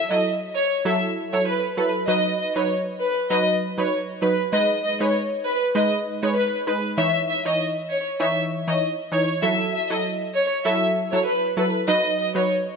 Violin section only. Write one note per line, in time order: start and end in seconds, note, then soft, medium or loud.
0.11 0.22 D#5 medium
0.55 0.69 C#5 medium
0.86 1.00 E5 medium
1.33 1.44 C#5 medium
1.47 1.61 B4 medium
1.77 1.92 B4 medium
2.08 2.22 D#5 loud
2.38 2.53 D#5 medium
2.56 2.67 C#5 medium
3.00 3.14 B4 medium
3.30 3.45 D#5 medium
3.78 3.89 C#5 medium
4.22 4.36 B4 medium
4.53 4.67 D#5 loud
4.83 4.98 D#5 medium
5.00 5.12 C#5 medium
5.44 5.59 B4 medium
5.75 5.89 D#5 medium
6.23 6.34 C#5 medium
6.36 6.51 B4 medium
6.67 6.81 B4 medium
6.97 7.12 E5 loud
7.28 7.42 E5 medium
7.45 7.56 D#5 medium
7.89 8.04 C#5 medium
8.20 8.34 E5 medium
8.68 8.79 D#5 medium
9.12 9.26 C#5 medium
9.42 9.57 E5 loud
9.73 9.87 E5 medium
9.90 10.01 D#5 medium
10.34 10.49 C#5 medium
10.65 10.79 E5 medium
11.12 11.24 C#5 medium
11.26 11.40 B4 medium
11.57 11.71 B4 medium
11.87 12.02 D#5 loud
12.18 12.32 D#5 medium
12.35 12.46 C#5 medium